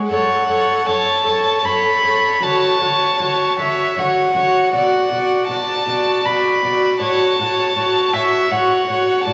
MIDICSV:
0, 0, Header, 1, 5, 480
1, 0, Start_track
1, 0, Key_signature, 3, "minor"
1, 0, Tempo, 770218
1, 64, Time_signature, 3, 2, 24, 8
1, 3904, Tempo, 750000
1, 5867, End_track
2, 0, Start_track
2, 0, Title_t, "Violin"
2, 0, Program_c, 0, 40
2, 70, Note_on_c, 0, 78, 58
2, 542, Note_on_c, 0, 81, 63
2, 551, Note_off_c, 0, 78, 0
2, 1026, Note_on_c, 0, 83, 71
2, 1035, Note_off_c, 0, 81, 0
2, 1512, Note_on_c, 0, 81, 65
2, 1521, Note_off_c, 0, 83, 0
2, 2238, Note_off_c, 0, 81, 0
2, 2242, Note_on_c, 0, 76, 51
2, 2485, Note_on_c, 0, 78, 52
2, 2494, Note_off_c, 0, 76, 0
2, 2953, Note_off_c, 0, 78, 0
2, 2957, Note_on_c, 0, 78, 63
2, 3415, Note_off_c, 0, 78, 0
2, 3418, Note_on_c, 0, 81, 64
2, 3896, Note_on_c, 0, 83, 56
2, 3905, Note_off_c, 0, 81, 0
2, 4383, Note_off_c, 0, 83, 0
2, 4387, Note_on_c, 0, 81, 68
2, 5102, Note_on_c, 0, 76, 63
2, 5111, Note_off_c, 0, 81, 0
2, 5341, Note_on_c, 0, 78, 61
2, 5351, Note_off_c, 0, 76, 0
2, 5810, Note_off_c, 0, 78, 0
2, 5814, Note_on_c, 0, 81, 68
2, 5867, Note_off_c, 0, 81, 0
2, 5867, End_track
3, 0, Start_track
3, 0, Title_t, "Violin"
3, 0, Program_c, 1, 40
3, 69, Note_on_c, 1, 73, 44
3, 299, Note_off_c, 1, 73, 0
3, 317, Note_on_c, 1, 73, 42
3, 544, Note_off_c, 1, 73, 0
3, 550, Note_on_c, 1, 73, 41
3, 782, Note_off_c, 1, 73, 0
3, 790, Note_on_c, 1, 73, 34
3, 1018, Note_off_c, 1, 73, 0
3, 1022, Note_on_c, 1, 73, 36
3, 1257, Note_off_c, 1, 73, 0
3, 1263, Note_on_c, 1, 73, 36
3, 1498, Note_off_c, 1, 73, 0
3, 1508, Note_on_c, 1, 73, 42
3, 1741, Note_off_c, 1, 73, 0
3, 1745, Note_on_c, 1, 73, 39
3, 1985, Note_off_c, 1, 73, 0
3, 1991, Note_on_c, 1, 73, 41
3, 2229, Note_off_c, 1, 73, 0
3, 2238, Note_on_c, 1, 73, 36
3, 2471, Note_off_c, 1, 73, 0
3, 2484, Note_on_c, 1, 73, 39
3, 2709, Note_off_c, 1, 73, 0
3, 2713, Note_on_c, 1, 73, 38
3, 2947, Note_off_c, 1, 73, 0
3, 2956, Note_on_c, 1, 74, 42
3, 3181, Note_off_c, 1, 74, 0
3, 3185, Note_on_c, 1, 74, 41
3, 3421, Note_off_c, 1, 74, 0
3, 3431, Note_on_c, 1, 74, 37
3, 3663, Note_off_c, 1, 74, 0
3, 3667, Note_on_c, 1, 74, 37
3, 3888, Note_off_c, 1, 74, 0
3, 3892, Note_on_c, 1, 74, 43
3, 4135, Note_off_c, 1, 74, 0
3, 4145, Note_on_c, 1, 74, 41
3, 4382, Note_off_c, 1, 74, 0
3, 4386, Note_on_c, 1, 73, 45
3, 4626, Note_off_c, 1, 73, 0
3, 4641, Note_on_c, 1, 73, 41
3, 4870, Note_off_c, 1, 73, 0
3, 4874, Note_on_c, 1, 73, 42
3, 5109, Note_off_c, 1, 73, 0
3, 5117, Note_on_c, 1, 73, 35
3, 5349, Note_off_c, 1, 73, 0
3, 5355, Note_on_c, 1, 73, 44
3, 5586, Note_off_c, 1, 73, 0
3, 5595, Note_on_c, 1, 73, 42
3, 5824, Note_off_c, 1, 73, 0
3, 5833, Note_on_c, 1, 74, 52
3, 5867, Note_off_c, 1, 74, 0
3, 5867, End_track
4, 0, Start_track
4, 0, Title_t, "Viola"
4, 0, Program_c, 2, 41
4, 0, Note_on_c, 2, 56, 49
4, 69, Note_off_c, 2, 56, 0
4, 73, Note_on_c, 2, 69, 45
4, 301, Note_off_c, 2, 69, 0
4, 307, Note_on_c, 2, 69, 43
4, 539, Note_off_c, 2, 69, 0
4, 548, Note_on_c, 2, 69, 43
4, 780, Note_off_c, 2, 69, 0
4, 791, Note_on_c, 2, 69, 42
4, 1023, Note_off_c, 2, 69, 0
4, 1033, Note_on_c, 2, 69, 47
4, 1263, Note_off_c, 2, 69, 0
4, 1272, Note_on_c, 2, 69, 38
4, 1503, Note_off_c, 2, 69, 0
4, 1518, Note_on_c, 2, 66, 48
4, 1746, Note_off_c, 2, 66, 0
4, 1750, Note_on_c, 2, 66, 41
4, 1988, Note_off_c, 2, 66, 0
4, 2003, Note_on_c, 2, 66, 36
4, 2232, Note_off_c, 2, 66, 0
4, 2236, Note_on_c, 2, 66, 38
4, 2470, Note_off_c, 2, 66, 0
4, 2476, Note_on_c, 2, 66, 44
4, 2704, Note_off_c, 2, 66, 0
4, 2707, Note_on_c, 2, 66, 39
4, 2945, Note_off_c, 2, 66, 0
4, 2947, Note_on_c, 2, 66, 48
4, 3182, Note_off_c, 2, 66, 0
4, 3191, Note_on_c, 2, 66, 42
4, 3422, Note_off_c, 2, 66, 0
4, 3425, Note_on_c, 2, 66, 38
4, 3663, Note_off_c, 2, 66, 0
4, 3668, Note_on_c, 2, 66, 37
4, 3895, Note_off_c, 2, 66, 0
4, 3899, Note_on_c, 2, 66, 44
4, 4139, Note_off_c, 2, 66, 0
4, 4142, Note_on_c, 2, 66, 41
4, 4381, Note_off_c, 2, 66, 0
4, 4385, Note_on_c, 2, 66, 50
4, 4622, Note_off_c, 2, 66, 0
4, 4626, Note_on_c, 2, 66, 44
4, 4858, Note_off_c, 2, 66, 0
4, 4862, Note_on_c, 2, 66, 41
4, 5103, Note_off_c, 2, 66, 0
4, 5111, Note_on_c, 2, 66, 44
4, 5343, Note_off_c, 2, 66, 0
4, 5347, Note_on_c, 2, 66, 50
4, 5571, Note_off_c, 2, 66, 0
4, 5575, Note_on_c, 2, 66, 45
4, 5812, Note_off_c, 2, 66, 0
4, 5816, Note_on_c, 2, 66, 54
4, 5867, Note_off_c, 2, 66, 0
4, 5867, End_track
5, 0, Start_track
5, 0, Title_t, "Cello"
5, 0, Program_c, 3, 42
5, 65, Note_on_c, 3, 42, 48
5, 115, Note_off_c, 3, 42, 0
5, 300, Note_on_c, 3, 42, 44
5, 350, Note_off_c, 3, 42, 0
5, 541, Note_on_c, 3, 42, 48
5, 591, Note_off_c, 3, 42, 0
5, 780, Note_on_c, 3, 42, 43
5, 830, Note_off_c, 3, 42, 0
5, 1020, Note_on_c, 3, 42, 51
5, 1070, Note_off_c, 3, 42, 0
5, 1264, Note_on_c, 3, 42, 40
5, 1314, Note_off_c, 3, 42, 0
5, 1499, Note_on_c, 3, 50, 50
5, 1549, Note_off_c, 3, 50, 0
5, 1752, Note_on_c, 3, 50, 42
5, 1802, Note_off_c, 3, 50, 0
5, 1991, Note_on_c, 3, 50, 38
5, 2041, Note_off_c, 3, 50, 0
5, 2230, Note_on_c, 3, 50, 42
5, 2280, Note_off_c, 3, 50, 0
5, 2473, Note_on_c, 3, 50, 51
5, 2523, Note_off_c, 3, 50, 0
5, 2707, Note_on_c, 3, 50, 43
5, 2757, Note_off_c, 3, 50, 0
5, 2947, Note_on_c, 3, 47, 51
5, 2997, Note_off_c, 3, 47, 0
5, 3185, Note_on_c, 3, 47, 46
5, 3235, Note_off_c, 3, 47, 0
5, 3420, Note_on_c, 3, 47, 45
5, 3470, Note_off_c, 3, 47, 0
5, 3658, Note_on_c, 3, 47, 47
5, 3708, Note_off_c, 3, 47, 0
5, 3893, Note_on_c, 3, 47, 52
5, 3944, Note_off_c, 3, 47, 0
5, 4139, Note_on_c, 3, 47, 47
5, 4190, Note_off_c, 3, 47, 0
5, 4376, Note_on_c, 3, 45, 51
5, 4427, Note_off_c, 3, 45, 0
5, 4629, Note_on_c, 3, 45, 50
5, 4681, Note_off_c, 3, 45, 0
5, 4861, Note_on_c, 3, 45, 46
5, 4912, Note_off_c, 3, 45, 0
5, 5101, Note_on_c, 3, 45, 49
5, 5152, Note_off_c, 3, 45, 0
5, 5343, Note_on_c, 3, 45, 55
5, 5394, Note_off_c, 3, 45, 0
5, 5585, Note_on_c, 3, 45, 46
5, 5637, Note_off_c, 3, 45, 0
5, 5824, Note_on_c, 3, 45, 59
5, 5867, Note_off_c, 3, 45, 0
5, 5867, End_track
0, 0, End_of_file